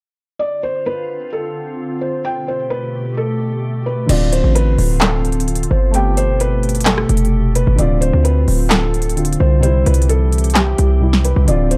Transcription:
0.39 2.23 D3 medium
0.39 2.23 C4 medium
0.39 2.23 F4 medium
0.39 0.61 D5 medium
0.63 0.85 C5 medium
0.86 1.30 B4 medium
1.33 1.98 A4 medium
2.01 2.23 C5 medium
2.25 4.08 B2 medium
2.25 4.08 A3 medium
2.25 4.08 G4 medium
2.25 2.46 G5 medium
2.48 2.70 C5 medium
2.70 3.14 B4 medium
3.17 3.82 A4 medium
3.86 4.08 B4 medium
4.07 4.43 D1 loud
4.07 5.89 D3 medium
4.07 5.92 D3 medium
4.07 5.90 C4 medium
4.07 5.92 C4 medium
4.07 5.92 F4 medium
4.07 4.31 D5 medium
4.07 closed hi-hat medium
4.07 crash loud
4.12 5.92 F4 medium
4.33 4.54 C5 medium
4.33 closed hi-hat medium
4.44 4.77 A1 loud
4.55 4.99 B4 medium
4.55 closed hi-hat medium
4.78 5.67 D1 loud
4.78 open hi-hat medium
5.01 5.67 A4 medium
5.01 snare loud
5.01 clap loud
5.01 closed hi-hat medium
5.25 closed hi-hat soft
5.32 closed hi-hat medium
5.40 closed hi-hat medium
5.48 closed hi-hat medium
5.55 closed hi-hat medium
5.63 closed hi-hat medium
5.71 7.05 G1 loud
5.71 5.92 C5 medium
5.91 7.77 B2 medium
5.91 7.73 A3 medium
5.91 7.77 A3 medium
5.91 7.75 B3 medium
5.91 7.77 G4 medium
5.91 6.16 G5 medium
5.91 closed hi-hat medium
5.96 7.76 G4 medium
6.17 6.39 C5 medium
6.17 closed hi-hat medium
6.40 6.84 B4 medium
6.40 closed hi-hat medium
6.63 closed hi-hat soft
6.69 closed hi-hat medium
6.75 closed hi-hat medium
6.81 closed hi-hat medium
6.85 7.51 A4 medium
6.85 snare loud
6.85 clap loud
6.85 closed hi-hat medium
6.98 cross-stick loud
7.09 7.65 F1 loud
7.09 closed hi-hat medium
7.17 closed hi-hat medium
7.25 closed hi-hat soft
7.55 7.77 B4 medium
7.55 closed hi-hat medium
7.67 7.78 G1 loud
7.76 8.12 D1 loud
7.76 9.13 D3 medium
7.76 9.61 D3 medium
7.76 9.14 C4 medium
7.76 9.61 C4 medium
7.76 9.61 F4 medium
7.76 8.00 D5 medium
7.76 closed hi-hat medium
7.81 9.16 F4 medium
8.01 8.23 C5 medium
8.01 closed hi-hat medium
8.13 8.47 D2 loud
8.24 8.68 B4 medium
8.24 closed hi-hat medium
8.48 9.37 D1 loud
8.48 open hi-hat medium
8.70 9.36 A4 medium
8.70 snare loud
8.70 clap loud
8.70 closed hi-hat medium
8.94 closed hi-hat soft
9.02 closed hi-hat medium
9.09 closed hi-hat medium
9.16 9.63 D3 medium
9.16 9.63 C4 soft
9.16 9.64 F4 medium
9.16 closed hi-hat medium
9.25 closed hi-hat medium
9.33 closed hi-hat medium
9.40 9.85 C2 loud
9.40 9.61 C5 medium
9.61 10.98 C3 medium
9.61 11.46 E3 medium
9.61 10.99 G3 medium
9.61 11.78 C4 medium
9.61 11.46 G4 medium
9.61 9.84 C5 medium
9.61 closed hi-hat medium
9.66 11.00 E4 medium
9.86 10.75 C2 loud
9.86 10.08 B4 medium
9.86 closed hi-hat medium
9.94 closed hi-hat medium
10.02 closed hi-hat medium
10.09 10.53 A4 medium
10.09 closed hi-hat medium
10.32 closed hi-hat medium
10.38 closed hi-hat medium
10.44 closed hi-hat medium
10.50 closed hi-hat medium
10.55 11.21 G4 medium
10.55 snare loud
10.55 clap medium
10.55 closed hi-hat medium
10.78 11.34 C2 loud
10.78 closed hi-hat medium
11.00 11.47 C3 medium
11.00 11.48 G3 soft
11.00 11.49 E4 medium
11.13 snare medium
11.25 11.46 B4 medium
11.25 closed hi-hat medium
11.36 11.47 C2 loud
11.45 11.78 D1 loud
11.45 11.78 D3 medium
11.45 11.78 C4 medium
11.45 11.78 F4 medium
11.45 11.70 D5 medium
11.45 closed hi-hat medium
11.50 11.78 F4 medium
11.71 11.78 C5 medium
11.71 closed hi-hat medium

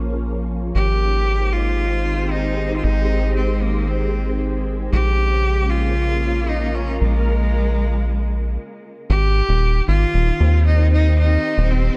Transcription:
0.00 0.72 A#1 medium
0.00 0.75 F3 medium
0.00 2.34 A#3 medium
0.00 0.75 C#4 medium
0.00 0.75 G#4 medium
0.00 0.75 C#5 medium
0.75 2.81 G#1 medium
0.75 4.92 D#3 medium
0.75 1.54 G4 loud
1.02 5.89 C5 medium
1.07 8.58 G#3 medium
1.44 6.30 C4 medium
1.44 6.18 G4 medium
1.53 2.33 F4 loud
2.32 2.76 D#4 medium
2.76 2.85 F4 medium
2.84 4.90 G#1 medium
2.84 3.35 D#4 loud
3.36 3.63 C4 medium
3.62 3.89 A#3 medium
3.88 4.40 C4 medium
4.92 6.98 A#1 medium
4.92 8.57 C#3 medium
4.92 5.72 G4 loud
5.28 8.58 A#3 medium
5.33 8.58 F4 medium
5.70 6.50 F4 loud
6.49 6.77 D#4 medium
6.49 8.58 A#4 medium
6.75 7.00 C#4 medium
7.01 8.57 A#1 medium
7.01 8.54 G#3 medium
9.10 9.42 G#1 loud
9.10 11.97 D#3 medium
9.10 9.84 G4 loud
9.49 9.81 D#1 loud
9.87 10.05 G#1 medium
9.87 11.97 C4 medium
9.87 10.62 F4 loud
10.14 10.31 D#1 medium
10.25 11.97 C5 medium
10.36 11.37 D#2 medium
10.36 11.97 G4 medium
10.66 10.90 D#4 loud
10.92 11.17 D#4 loud
11.18 11.72 D#4 loud
11.57 11.90 D#1 loud
11.70 11.97 C4 medium

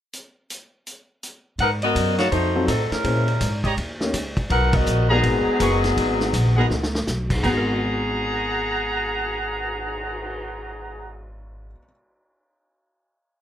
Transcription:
0.13 closed hi-hat medium
0.50 closed hi-hat medium
0.87 closed hi-hat soft
1.23 closed hi-hat medium
1.58 1.94 G#2 medium
1.58 1.71 D#4 medium
1.58 1.70 A#4 medium
1.58 1.70 B4 medium
1.58 1.71 F#5 medium
1.58 kick soft
1.58 ride medium
1.82 2.17 B3 medium
1.82 2.17 F#4 medium
1.82 2.17 A#4 medium
1.82 2.17 D#5 medium
1.82 ride soft
1.95 2.31 F#2 medium
1.95 kick soft
1.95 hi-hat pedal soft
1.95 ride medium
2.18 2.31 A#3 medium
2.18 2.31 D#4 medium
2.18 2.27 F#4 medium
2.18 2.31 F#4 medium
2.18 2.31 C#5 medium
2.18 2.27 D#5 medium
2.18 2.27 F5 medium
2.18 2.27 A5 medium
2.18 snare soft
2.18 ride soft
2.31 2.67 F2 medium
2.31 2.66 A3 medium
2.31 2.66 D#4 medium
2.31 2.66 F#4 medium
2.31 2.66 C5 medium
2.31 kick soft
2.31 ride medium
2.56 2.67 F#3 medium
2.56 2.67 C4 medium
2.56 2.67 D#4 medium
2.56 2.68 F4 medium
2.56 2.68 A4 medium
2.67 2.90 A2 medium
2.67 2.89 F#3 medium
2.67 2.89 C4 medium
2.67 2.89 D#4 medium
2.67 2.89 A4 medium
2.67 kick soft
2.67 hi-hat pedal medium
2.67 ride medium
2.91 3.65 G#3 medium
2.91 3.65 C#4 medium
2.91 3.64 E4 medium
2.91 3.65 A#4 medium
2.91 muted upright bass stroke soft
2.91 snare soft
2.91 ride soft
3.04 3.40 A#2 medium
3.04 3.25 A#3 soft
3.04 3.26 C#4 soft
3.04 3.25 E4 soft
3.04 3.25 G#4 soft
3.04 3.26 C5 soft
3.04 kick soft
3.04 ride medium
3.28 ride soft
3.41 3.76 G#2 medium
3.41 kick soft
3.41 hi-hat pedal medium
3.41 ride medium
3.64 3.73 G4 medium
3.64 3.73 C#5 medium
3.64 3.73 D#5 medium
3.64 3.73 A#5 medium
3.64 kick soft
3.64 ride soft
3.77 4.13 D#2 medium
3.77 kick soft
3.77 ride medium
4.01 4.13 A#3 medium
4.01 4.13 C#4 soft
4.01 4.13 D#4 soft
4.01 4.13 G4 medium
4.01 4.13 C#5 medium
4.01 snare medium
4.13 4.49 C#2 medium
4.13 kick soft
4.13 hi-hat pedal medium
4.13 ride medium
4.37 kick medium
4.37 ride soft
4.50 4.86 B1 medium
4.50 4.72 D#4 medium
4.50 4.72 A#4 medium
4.50 4.72 B4 medium
4.50 4.73 F#5 medium
4.50 kick soft
4.50 ride medium
4.73 5.10 B3 medium
4.73 5.11 F#4 medium
4.73 5.11 A#4 medium
4.73 5.11 D#5 loud
4.73 kick medium
4.73 ride medium
4.86 5.22 A#1 medium
4.86 hi-hat pedal medium
5.09 7.03 F#3 medium
5.09 5.58 G#3 medium
5.09 7.03 B3 medium
5.09 5.58 B3 medium
5.09 7.03 D#4 medium
5.09 5.58 D#4 medium
5.09 5.58 F#4 medium
5.09 5.57 G#4 loud
5.09 7.04 G#4 loud
5.09 5.58 A#4 medium
5.09 5.57 F#5 medium
5.09 5.57 A#5 loud
5.23 5.45 G#1 medium
5.23 kick soft
5.23 ride medium
5.47 muted upright bass stroke soft
5.59 5.96 F#1 medium
5.59 6.15 G#3 medium
5.59 6.15 B3 medium
5.59 6.16 D#4 medium
5.59 6.16 F#4 medium
5.59 5.75 G#4 medium
5.59 6.16 A#4 medium
5.59 5.75 B4 medium
5.59 5.76 F#5 medium
5.59 5.76 C#6 medium
5.59 kick soft
5.59 hi-hat pedal medium
5.59 ride medium
5.84 snare soft
5.84 ride soft
5.97 6.32 G#1 medium
5.97 kick soft
5.97 ride medium
6.20 snare soft
6.33 6.69 A#1 medium
6.33 kick soft
6.33 hi-hat pedal medium
6.33 ride medium
6.56 6.69 G#3 medium
6.56 6.70 B3 soft
6.56 6.69 D#4 soft
6.56 6.70 F#4 soft
6.56 6.66 G#4 medium
6.56 6.70 A#4 medium
6.56 6.66 B4 medium
6.56 6.66 F#5 medium
6.56 6.66 A#5 medium
6.70 7.06 C#2 medium
6.70 snare soft
6.83 snare medium
6.95 snare medium
7.07 7.43 B1 medium
7.07 snare medium
7.07 hi-hat pedal medium
7.30 11.65 G#2 medium
7.30 kick medium
7.30 crash medium
7.38 11.72 G#3 soft
7.43 11.73 G#1 medium
7.43 11.78 B3 medium
7.43 11.19 G#4 loud
7.43 11.19 F#5 medium
7.43 11.19 A#5 loud
7.43 kick medium
7.43 crash medium
7.51 11.84 F#4 soft
7.57 11.90 A#4 medium
7.68 cymbal swell soft

